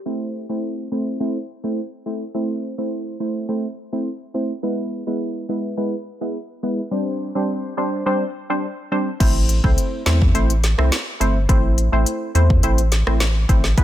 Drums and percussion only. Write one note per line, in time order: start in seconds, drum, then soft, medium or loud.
9.20 kick loud
9.20 closed hi-hat medium
9.20 crash medium
9.49 closed hi-hat medium
9.64 kick medium
9.78 closed hi-hat medium
10.06 snare loud
10.06 closed hi-hat medium
10.22 kick medium
10.35 closed hi-hat medium
10.50 closed hi-hat medium
10.64 snare medium
10.64 closed hi-hat medium
10.79 cross-stick medium
10.92 snare loud
10.92 closed hi-hat medium
11.21 closed hi-hat medium
11.49 kick loud
11.49 closed hi-hat medium
11.78 closed hi-hat medium
12.06 closed hi-hat medium
12.35 closed hi-hat medium
12.50 kick medium
12.63 closed hi-hat medium
12.78 closed hi-hat medium
12.92 snare medium
12.92 closed hi-hat medium
13.07 cross-stick loud
13.20 snare loud
13.20 closed hi-hat medium
13.49 kick medium
13.49 closed hi-hat medium
13.64 snare medium
13.78 kick loud
13.78 closed hi-hat medium